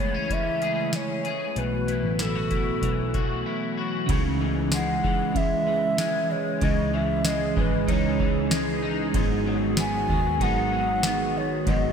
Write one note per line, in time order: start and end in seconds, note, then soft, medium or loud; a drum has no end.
0.00 0.30 B1 medium
0.00 1.54 C#3 medium
0.00 1.56 C#3 medium
0.00 0.30 E3 medium
0.00 4.05 E3 medium
0.00 1.54 G#3 medium
0.00 4.05 A3 medium
0.00 0.14 B3 medium
0.00 1.54 E4 medium
0.00 0.61 G#4 medium
0.00 0.34 C#5 loud
0.14 0.92 C#4 soft
0.30 1.21 C#2 medium
0.30 2.38 E3 medium
0.30 0.97 E5 loud
0.30 kick medium
0.30 closed hi-hat medium
0.62 1.23 G#4 medium
0.62 closed hi-hat soft
0.93 1.63 C#4 medium
0.93 1.60 C#5 medium
0.93 snare loud
0.93 closed hi-hat medium
1.25 1.63 G#4 medium
1.25 closed hi-hat soft
1.56 2.02 B1 medium
1.56 4.09 B2 medium
1.56 4.07 F#3 medium
1.56 4.07 B3 medium
1.56 4.07 F#4 medium
1.56 2.23 B4 medium
1.56 closed hi-hat medium
1.88 2.19 E4 medium
1.88 closed hi-hat medium
2.04 2.79 A1 medium
2.19 2.35 E4 medium
2.19 3.79 A4 medium
2.19 snare medium
2.19 closed hi-hat medium
2.35 3.13 F#4 medium
2.51 3.46 E4 medium
2.51 kick medium
2.51 closed hi-hat soft
2.82 3.43 B1 loud
2.82 4.40 E3 medium
2.82 kick medium
2.82 closed hi-hat medium
3.14 3.76 F#4 medium
3.14 kick medium
3.14 closed hi-hat soft
3.46 6.96 E4 medium
3.78 4.16 F#4 medium
4.06 5.04 C#2 loud
4.06 5.32 C#3 medium
4.06 6.61 C#3 medium
4.06 5.35 E3 medium
4.06 9.11 E3 medium
4.06 9.11 G#3 medium
4.06 9.11 C#4 medium
4.06 11.93 G#4 medium
4.06 kick loud
4.06 ride medium
4.12 5.38 G#3 medium
4.12 5.39 D#4 medium
4.40 5.03 E3 medium
4.72 5.98 G#3 medium
4.72 5.38 F#5 loud
4.72 snare medium
4.72 ride medium
4.72 tambourine medium
5.04 5.35 G#1 medium
5.04 5.66 E3 medium
5.04 kick loud
5.34 6.58 C#2 loud
5.34 5.96 C#3 medium
5.34 5.98 E3 medium
5.34 6.33 E5 loud
5.34 kick medium
5.34 ride medium
5.38 6.01 G#3 medium
5.67 6.92 E3 medium
5.97 6.59 C#3 medium
5.97 6.61 E3 medium
5.97 7.25 G#3 medium
5.97 6.63 G#3 medium
5.97 snare loud
5.97 ride medium
5.97 tambourine medium
6.31 6.65 C#5 medium
6.61 7.53 C#2 loud
6.61 6.93 C#3 medium
6.61 9.15 C#3 medium
6.61 6.94 E3 medium
6.61 6.94 G#3 medium
6.61 6.96 D#5 loud
6.61 kick loud
6.61 ride medium
6.65 6.95 D#4 medium
6.93 7.55 E3 medium
6.93 7.91 G#3 soft
6.93 7.28 E5 loud
6.98 7.88 E3 soft
7.25 8.51 G#3 medium
7.25 7.57 D#5 medium
7.25 snare medium
7.25 ride medium
7.25 tambourine medium
7.56 7.87 G#1 medium
7.56 8.18 E3 medium
7.56 7.91 B4 medium
7.56 kick loud
7.87 9.10 C#2 loud
7.87 8.49 C#3 medium
7.87 8.51 E3 medium
7.87 8.82 D#4 medium
7.87 8.52 C#5 medium
7.87 kick loud
7.87 ride medium
7.91 8.54 G#3 medium
7.91 8.55 D#4 medium
8.19 9.21 E3 medium
8.19 kick loud
8.50 9.14 C#3 medium
8.50 9.15 E3 medium
8.50 9.49 G#3 medium
8.50 snare loud
8.50 ride medium
8.50 tambourine medium
8.54 9.18 G#3 medium
8.54 9.20 D#4 medium
8.83 10.40 D#4 medium
9.12 10.05 G#1 loud
9.12 10.39 G#2 medium
9.12 11.66 G#2 medium
9.12 10.39 D#3 loud
9.12 11.93 D#3 medium
9.12 11.93 G#3 medium
9.12 11.93 B3 medium
9.12 11.93 F#4 medium
9.12 kick loud
9.12 ride medium
9.17 10.40 F#3 medium
9.17 10.42 B3 loud
9.17 10.44 D#4 loud
9.46 10.08 F#3 medium
9.77 11.02 B3 medium
9.77 10.44 G#5 loud
9.77 snare loud
9.77 ride medium
9.77 tambourine medium
10.09 10.39 D#2 medium
10.09 10.71 F#3 medium
10.09 kick loud
10.39 11.63 G#1 loud
10.39 11.02 D#3 medium
10.39 11.03 F#3 medium
10.39 11.05 B3 medium
10.39 11.93 D#4 medium
10.39 11.39 F#5 loud
10.39 kick medium
10.39 ride medium
10.45 11.08 D#4 medium
10.72 11.93 F#3 medium
11.02 11.67 D#3 medium
11.02 11.67 F#3 medium
11.02 11.93 B3 medium
11.02 snare loud
11.02 ride medium
11.02 tambourine medium
11.06 11.68 B3 medium
11.06 11.93 D#4 medium
11.38 11.71 C#5 medium
11.64 11.93 G#1 loud
11.64 11.93 G#2 medium
11.64 11.93 D#3 medium
11.64 kick loud
11.64 ride medium
11.69 11.93 F#3 medium
11.69 11.93 B3 medium
11.69 11.93 D#5 loud